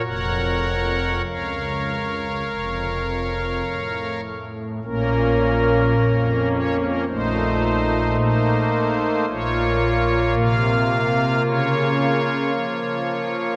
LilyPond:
<<
  \new Staff \with { instrumentName = "Pipe organ" } { \time 4/4 \key bes \minor \tempo 4 = 54 <bes' des'' ges''>4 <bes' des'' f''>2~ <bes' des'' f''>8 r8 | bes'4. des''16 bes'16 c''4 c''4 | des''4 f''4 des''2 | }
  \new Staff \with { instrumentName = "Pipe organ" } { \clef bass \time 4/4 \key bes \minor << { r1 | <bes des'>2 <a ees'>2 | <bes f'>1 | } \\ { <f,, f,>4 des,4 <f,, f,>4 a,4 | <bes,, bes,>4 f,4 <bes,, bes,>4 bes4 | <bes,, bes,>4 c4 des4 f4 | } >> }
>>